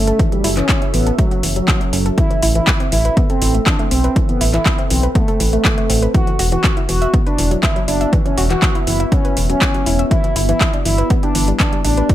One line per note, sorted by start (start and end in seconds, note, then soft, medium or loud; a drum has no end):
0.00 0.13 G1 medium
0.00 0.18 A3 loud
0.00 2.14 C#4 medium
0.00 2.14 F#4 medium
0.00 6.10 A4 medium
0.00 2.14 E5 medium
0.07 0.16 A4 medium
0.07 closed hi-hat soft
0.19 0.31 E3 loud
0.19 kick loud
0.19 closed hi-hat soft
0.32 0.37 E3 medium
0.32 0.48 G3 medium
0.32 closed hi-hat soft
0.44 0.62 F#1 medium
0.44 0.53 E4 loud
0.44 open hi-hat loud
0.57 0.62 E3 loud
0.57 0.81 C#4 loud
0.57 clap soft
0.57 closed hi-hat soft
0.69 0.81 E3 medium
0.69 kick loud
0.69 clap loud
0.69 closed hi-hat soft
0.82 0.93 C#4 medium
0.82 closed hi-hat soft
0.94 1.12 A1 medium
0.94 1.03 E3 medium
0.94 1.10 B3 medium
0.94 open hi-hat loud
1.07 1.15 A4 medium
1.07 closed hi-hat soft
1.19 1.42 F#3 loud
1.19 1.24 A3 medium
1.19 kick loud
1.19 closed hi-hat soft
1.31 1.40 F#4 medium
1.31 closed hi-hat soft
1.43 1.61 F#1 medium
1.43 1.52 E3 medium
1.43 open hi-hat loud
1.56 2.08 F#3 loud
1.56 1.64 F#3 medium
1.56 closed hi-hat soft
1.68 1.80 E3 medium
1.68 kick loud
1.68 clap loud
1.68 closed hi-hat soft
1.81 1.92 F#3 medium
1.81 closed hi-hat soft
1.93 2.11 F#1 loud
1.93 2.02 C#4 medium
1.93 open hi-hat loud
2.06 2.14 A4 medium
2.06 closed hi-hat soft
2.18 2.29 E3 loud
2.18 6.11 C4 medium
2.18 2.41 E4 loud
2.18 6.10 B4 medium
2.18 4.14 E5 medium
2.18 kick loud
2.18 closed hi-hat soft
2.31 2.35 E3 medium
2.31 closed hi-hat soft
2.42 2.61 A1 loud
2.42 2.51 E4 loud
2.42 open hi-hat loud
2.55 2.60 E3 loud
2.55 2.79 E4 loud
2.55 closed hi-hat soft
2.67 2.80 E3 medium
2.67 kick loud
2.67 clap loud
2.67 closed hi-hat soft
2.80 2.92 C4 medium
2.80 closed hi-hat soft
2.92 3.10 A1 medium
2.92 3.01 E3 medium
2.92 3.16 E4 loud
2.92 open hi-hat loud
3.05 3.13 B4 medium
3.05 closed hi-hat soft
3.17 3.22 B3 medium
3.17 kick loud
3.17 closed hi-hat soft
3.30 3.53 C4 loud
3.30 3.38 A4 medium
3.30 closed hi-hat soft
3.42 3.60 A1 loud
3.42 3.50 E3 medium
3.42 open hi-hat loud
3.55 3.63 A3 medium
3.55 closed hi-hat soft
3.67 3.79 E3 medium
3.67 3.83 D4 medium
3.67 kick loud
3.67 clap loud
3.67 closed hi-hat soft
3.79 3.91 A3 medium
3.79 closed hi-hat soft
3.91 4.09 B1 medium
3.91 4.00 C4 medium
3.91 4.15 C4 loud
3.91 open hi-hat loud
4.04 4.12 B4 medium
4.04 closed hi-hat soft
4.16 4.28 E3 loud
4.16 6.13 F#5 medium
4.16 kick loud
4.16 closed hi-hat soft
4.29 4.34 E3 medium
4.29 4.44 B3 medium
4.29 closed hi-hat soft
4.41 4.59 A1 loud
4.41 4.50 E4 loud
4.41 open hi-hat loud
4.54 4.59 E3 loud
4.54 4.77 E4 medium
4.54 clap soft
4.54 closed hi-hat soft
4.66 4.78 E3 medium
4.66 kick loud
4.66 clap loud
4.66 closed hi-hat soft
4.78 4.90 C4 medium
4.78 closed hi-hat soft
4.90 5.09 B1 medium
4.90 4.99 E3 medium
4.90 5.07 C4 medium
4.90 open hi-hat loud
5.03 5.11 B4 medium
5.03 closed hi-hat soft
5.15 5.39 A3 medium
5.15 5.21 B3 medium
5.15 kick loud
5.15 closed hi-hat soft
5.28 5.36 A4 medium
5.28 closed hi-hat soft
5.40 5.58 A1 medium
5.40 5.49 E3 medium
5.40 open hi-hat loud
5.53 6.05 A3 medium
5.53 5.61 A3 medium
5.53 closed hi-hat soft
5.65 5.77 E3 medium
5.65 kick loud
5.65 clap loud
5.65 closed hi-hat soft
5.78 5.89 A3 medium
5.78 closed hi-hat soft
5.90 6.08 A1 loud
5.90 5.98 C4 medium
5.90 open hi-hat loud
6.03 6.11 B4 medium
6.03 closed hi-hat soft
6.14 6.26 E3 loud
6.14 12.15 B3 medium
6.14 10.07 E4 medium
6.14 6.38 F#4 loud
6.14 10.07 F#4 medium
6.14 10.07 E5 medium
6.14 kick loud
6.14 closed hi-hat soft
6.27 6.32 E3 medium
6.27 closed hi-hat soft
6.39 6.57 E1 loud
6.39 6.48 F#4 loud
6.39 open hi-hat loud
6.52 6.57 E3 loud
6.52 6.76 F#4 loud
6.52 closed hi-hat soft
6.64 6.76 E3 medium
6.64 kick loud
6.64 clap loud
6.64 closed hi-hat soft
6.77 6.88 E4 medium
6.77 closed hi-hat soft
6.89 7.07 E1 medium
6.89 6.98 E3 medium
6.89 7.13 F#4 loud
6.89 open hi-hat loud
7.02 7.10 E5 medium
7.02 closed hi-hat soft
7.14 7.19 B3 medium
7.14 kick loud
7.14 closed hi-hat soft
7.26 7.50 D4 loud
7.26 7.35 B4 medium
7.26 closed hi-hat soft
7.38 7.56 E1 loud
7.38 7.47 E3 medium
7.38 open hi-hat loud
7.51 7.59 F#3 medium
7.51 closed hi-hat soft
7.63 7.75 E3 medium
7.63 7.79 E4 medium
7.63 kick loud
7.63 clap loud
7.63 closed hi-hat soft
7.76 7.87 F#3 medium
7.76 closed hi-hat soft
7.88 8.06 F#1 medium
7.88 8.12 D4 loud
7.88 7.97 E4 medium
7.88 open hi-hat loud
8.01 8.09 E5 medium
8.01 closed hi-hat soft
8.13 8.24 E3 loud
8.13 kick loud
8.13 closed hi-hat soft
8.26 8.30 E3 medium
8.26 8.41 C#4 medium
8.26 closed hi-hat soft
8.38 8.56 E1 loud
8.38 8.46 F#4 loud
8.38 open hi-hat loud
8.50 8.55 E3 loud
8.50 8.74 F#4 loud
8.50 clap soft
8.50 closed hi-hat soft
8.62 8.75 E3 medium
8.62 kick loud
8.62 clap loud
8.62 closed hi-hat soft
8.75 8.87 E4 medium
8.75 closed hi-hat soft
8.87 9.05 F#1 medium
8.87 8.96 E3 medium
8.87 9.03 E4 medium
8.87 open hi-hat loud
9.00 9.08 E5 medium
9.00 closed hi-hat soft
9.12 9.17 B3 medium
9.12 9.36 C#4 loud
9.12 kick loud
9.12 closed hi-hat soft
9.25 9.33 B4 medium
9.25 closed hi-hat soft
9.37 9.55 E1 medium
9.37 9.46 E3 medium
9.37 open hi-hat loud
9.50 9.58 F#3 medium
9.50 10.02 C#4 loud
9.50 closed hi-hat soft
9.62 9.74 E3 medium
9.62 kick loud
9.62 clap loud
9.62 closed hi-hat soft
9.74 9.86 F#3 medium
9.74 closed hi-hat soft
9.86 10.04 E1 medium
9.86 9.95 E4 medium
9.86 open hi-hat loud
9.99 10.07 E5 medium
9.99 closed hi-hat soft
10.11 10.23 E3 loud
10.11 12.15 E4 medium
10.11 10.35 E4 loud
10.11 12.15 G4 medium
10.11 12.15 D5 medium
10.11 kick loud
10.11 closed hi-hat soft
10.24 10.29 E3 medium
10.24 closed hi-hat soft
10.36 10.54 G1 loud
10.36 10.45 E4 loud
10.36 open hi-hat loud
10.49 10.54 E3 loud
10.49 10.72 E4 loud
10.49 closed hi-hat soft
10.61 10.73 E3 medium
10.61 kick loud
10.61 clap loud
10.61 closed hi-hat soft
10.74 10.85 D4 medium
10.74 closed hi-hat soft
10.85 11.04 G1 medium
10.85 10.94 E3 medium
10.85 11.09 E4 loud
10.85 open hi-hat loud
10.98 11.06 B4 medium
10.98 closed hi-hat soft
11.10 11.16 B3 medium
11.10 kick loud
11.10 closed hi-hat soft
11.23 11.47 D4 loud
11.23 11.31 G4 medium
11.23 closed hi-hat soft
11.35 11.53 G1 loud
11.35 11.44 E3 medium
11.35 open hi-hat loud
11.48 11.56 G3 medium
11.48 closed hi-hat soft
11.60 11.72 E3 medium
11.60 11.76 D4 medium
11.60 kick loud
11.60 clap loud
11.60 closed hi-hat soft
11.73 11.84 G3 medium
11.73 closed hi-hat soft
11.85 12.03 A1 medium
11.85 11.93 D4 medium
11.85 12.08 D4 loud
11.85 open hi-hat loud
11.97 12.06 B4 medium
11.97 closed hi-hat soft
12.09 12.15 E3 loud
12.09 kick loud
12.09 closed hi-hat soft